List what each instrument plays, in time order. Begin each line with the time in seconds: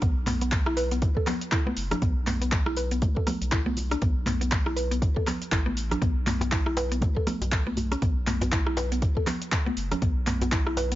0.02 analog synth bass B1, synth arpeggio sound B3, kick, closed hi-hat, mid tom, shaker
0.27 synth arpeggio sound B3, clap, mid tom, open hi-hat, high conga, shaker
0.41 synth arpeggio sound B3, closed hi-hat, muted conga, shaker
0.52 kick, clap, closed hi-hat, high conga, shaker
0.66 synth arpeggio sound E4, cross-stick
0.77 synth arpeggio sound B4, open hi-hat, shaker
0.91 synth arpeggio sound B3, closed hi-hat, shaker
1.02 kick, closed hi-hat, shaker
1.17 synth arpeggio sound A4, kick, muted conga
1.27 synth arpeggio sound B3, cross-stick, clap, open hi-hat, low conga, shaker
1.41 closed hi-hat, shaker
1.52 synth arpeggio sound E4, kick, clap, closed hi-hat, muted conga, shaker
1.67 synth arpeggio sound B3, high conga
1.77 analog synth bass F#1, open hi-hat, shaker
1.91 synth arpeggio sound D4, cross-stick, closed hi-hat, muted conga, low conga, shaker
2.02 analog synth bass B1, synth arpeggio sound B3, kick, closed hi-hat, mid tom, shaker
2.27 synth arpeggio sound B3, clap, mid tom, open hi-hat, high conga, shaker
2.42 synth arpeggio sound B3, closed hi-hat, muted conga, shaker
2.52 kick, clap, closed hi-hat, high conga, shaker
2.66 synth arpeggio sound E4, cross-stick
2.77 synth arpeggio sound B4, open hi-hat, muted conga, shaker
2.91 synth arpeggio sound B3, closed hi-hat, shaker
3.02 kick, closed hi-hat, high conga, shaker
3.16 synth arpeggio sound A4, kick, muted conga
3.27 synth arpeggio sound B3, cross-stick, open hi-hat, high conga, low conga, shaker
3.42 analog synth bass B1, closed hi-hat, shaker
3.52 synth arpeggio sound E4, kick, clap, closed hi-hat, muted conga, shaker
3.66 synth arpeggio sound B3, high conga
3.77 open hi-hat, high conga, shaker
3.91 synth arpeggio sound D4, cross-stick, closed hi-hat, muted conga, shaker
4.02 analog synth bass B1, synth arpeggio sound B3, kick, closed hi-hat, mid tom, shaker
4.26 synth arpeggio sound B3, clap, mid tom, open hi-hat, high conga, shaker
4.41 synth arpeggio sound B3, closed hi-hat, muted conga, shaker
4.52 kick, clap, closed hi-hat, high conga, shaker
4.66 synth arpeggio sound E4, cross-stick
4.76 synth arpeggio sound B4, open hi-hat, shaker
4.91 synth arpeggio sound B3, closed hi-hat, shaker
5.02 kick, closed hi-hat, shaker
5.16 synth arpeggio sound A4, kick, muted conga
5.27 synth arpeggio sound B3, cross-stick, clap, open hi-hat, low conga, shaker
5.42 closed hi-hat, shaker
5.52 analog synth bass A1, synth arpeggio sound E4, kick, clap, closed hi-hat, muted conga, shaker
5.66 synth arpeggio sound B3, high conga
5.77 open hi-hat, shaker
5.91 synth arpeggio sound D4, cross-stick, closed hi-hat, muted conga, low conga, shaker
6.02 analog synth bass B1, synth arpeggio sound B3, kick, closed hi-hat, mid tom, shaker
6.27 synth arpeggio sound B3, clap, mid tom, open hi-hat, djembe slap, high conga, shaker
6.41 synth arpeggio sound B3, closed hi-hat, djembe slap, muted conga, djembe bass, shaker
6.52 synth arpeggio sound E4, kick, clap, closed hi-hat, high conga, shaker
6.66 synth arpeggio sound E4, cross-stick
6.77 synth arpeggio sound B4, open hi-hat, muted conga, djembe slap, shaker
6.92 synth arpeggio sound B3, closed hi-hat, shaker
7.01 kick, closed hi-hat, high conga, djembe tone, shaker
7.16 synth arpeggio sound A4, kick, muted conga
7.27 synth arpeggio sound B3, cross-stick, open hi-hat, high conga, low conga, shaker
7.41 analog synth bass B1, closed hi-hat, djembe tone, shaker
7.52 kick, clap, closed hi-hat, muted conga, shaker
7.67 synth arpeggio sound B3, high conga
7.77 open hi-hat, high conga, djembe bass, shaker
7.91 synth arpeggio sound C#4, cross-stick, closed hi-hat, muted conga, shaker
8.02 analog synth bass B1, synth arpeggio sound B3, kick, closed hi-hat, mid tom, shaker
8.27 synth arpeggio sound B3, clap, mid tom, open hi-hat, djembe slap, high conga, shaker
8.41 synth arpeggio sound B3, closed hi-hat, djembe slap, muted conga, djembe tone, djembe bass, shaker
8.52 synth arpeggio sound E4, kick, clap, closed hi-hat, high conga, shaker
8.67 synth arpeggio sound E4, cross-stick
8.77 synth arpeggio sound B4, open hi-hat, djembe slap, shaker
8.92 synth arpeggio sound B3, closed hi-hat, shaker
9.02 kick, closed hi-hat, shaker
9.17 synth arpeggio sound A4, kick, muted conga
9.27 synth arpeggio sound B3, cross-stick, clap, open hi-hat, low conga, shaker
9.42 closed hi-hat, shaker
9.52 kick, clap, closed hi-hat, muted conga, shaker
9.66 synth arpeggio sound B3, high conga
9.77 analog synth bass F#1, open hi-hat, shaker
9.92 synth arpeggio sound C#4, cross-stick, closed hi-hat, muted conga, low conga, shaker
10.02 analog synth bass B1, synth arpeggio sound B3, kick, closed hi-hat, mid tom, shaker
10.27 synth arpeggio sound B3, clap, mid tom, open hi-hat, djembe slap, high conga, shaker
10.41 synth arpeggio sound B3, closed hi-hat, muted conga, djembe slap, djembe bass, shaker
10.52 synth arpeggio sound E4, kick, clap, closed hi-hat, high conga, shaker
10.67 synth arpeggio sound E4, cross-stick
10.76 synth arpeggio sound B4, open hi-hat, muted conga, djembe slap, shaker
10.92 synth arpeggio sound B3, closed hi-hat